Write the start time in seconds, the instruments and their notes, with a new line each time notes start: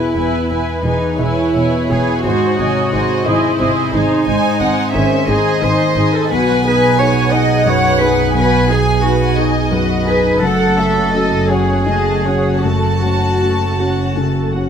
Already playing: grand piano E2 B2 B3 E4 G#4, viola section E4 B4, cello section E4, violin section B4 G#5
0.14 double bass section E1, grand piano E2, viola section E4 B4, violin section G#5
0.51 double bass section E1, grand piano B3, viola section E4 B4, violin section G#5
0.84 double bass section E1, grand piano E3 G#4, viola section E3 B4, cello section D#4, violin section G#5
1.17 double bass section E1, grand piano E4 G#4, cello section E4, viola section E4 B4, violin section C#5 G#5
1.55 double bass section E1, grand piano B2, viola section E4 B4, violin section G#5
1.89 double bass section E1, grand piano E4 G#4, viola section E4 B4, cello section G#4, violin section G#5
2.24 double bass section G#1, grand piano G#2, viola section D#4 C5, cello section F#4, violin section C5 G#5
2.58 double bass section G#1, grand piano C3, viola section D#4 D#5, violin section C#5 G#5
2.92 double bass section G#1, grand piano D#4 G#4, viola section D#4 C5, violin section D#5 G#5
3.24 double bass section G#1, cello section E4, grand piano G#4 D#5, violin section C5 G#5, viola section C5 D#5
3.58 double bass section G#1, grand piano C3, viola section C5 D#5, violin section G#5
3.92 double bass section G#1, cello section D#4, viola section D#4 C5, grand piano D#4 G#4, violin section G#5
4.26 double bass section G#1, grand piano G#2, viola section D#4 C5, violin section G#5
4.60 double bass section G#1, grand piano C4, viola section D#4 C5, violin section F#5 G#5
4.93 double bass section G#1, grand piano D#3 G#4, viola section D#3 C5, cello section C#4, violin section E5 G#5
5.27 double bass section G#1, grand piano D#4 G#4, viola section D#4 C5, cello section G#4, violin section D#5 G#5
5.62 double bass section G#1, grand piano D#3, viola section D#4 C5, cello section C5, violin section G#5
5.96 double bass section G#1, viola section D#4 C5, grand piano D#4 G#4, violin section G#5
6.14 cello section A4
6.29 double bass section B1, grand piano B1, viola section F#4 B4, cello section B4, violin section F#5 G#5
6.65 grand piano B3, viola section D#4 G#4, cello section B4, violin section G#5
6.97 grand piano D#4 G#4, viola section F#4 B4, cello section C#5, violin section F#5
7.31 grand piano D#4 G#4, viola section D#4 G#4, cello section D#5, violin section F#5 G#5
7.65 grand piano F#2, viola section F#4 B4, cello section C#5, violin section F#5
7.99 grand piano D#4 G#4, viola section D#4 G#4, cello section B4, violin section G#5
8.33 grand piano B1, viola section F#4, cello section B4, violin section F#5 G#5
8.37 viola section B4
8.67 grand piano B3, viola section D#4 G#4, cello section G#4, violin section G#5
9.03 grand piano D#4 G#4, cello section F#4, viola section F#4 B4, violin section F#5
9.37 viola section D#4 G#4, grand piano D#4 G#4, violin section D#5 G#5
9.72 grand piano F#2, viola section F#4 B4, violin section F#5
10.06 viola section D#4 G#4, grand piano D#4 G#4, cello section B4, violin section G#5
10.41 double bass section F#1, grand piano F#2, viola section A3 A4, cello section A4, violin section F#5 A5
10.77 grand piano A3, viola section C#4 F#4, violin section E5 F#5
11.14 viola section A3 A4, grand piano C#4 F#4, violin section D#5 A5
11.49 grand piano C#4 F#4, viola section C#4 F#4, cello section G#4, violin section C#5 F#5
11.87 grand piano C#3, viola section A3 F#4, violin section D#5 A5
12.25 grand piano C#4 F#4, viola section C#4 F#4, violin section C#5 F#5
12.63 grand piano F#2, viola section A3 A4, cello section F#4, violin section A5
13.02 grand piano A3, viola section C#4 F#4, violin section F#5
13.40 viola section A3 A4, grand piano C#4 F#4, violin section A5
13.78 viola section C#4 F#4, grand piano C#4 F#4, violin section F#5
14.17 grand piano C#3, viola section A3 A4, violin section A5
14.53 viola section C#4 F#4, grand piano C#4 F#4, violin section F#5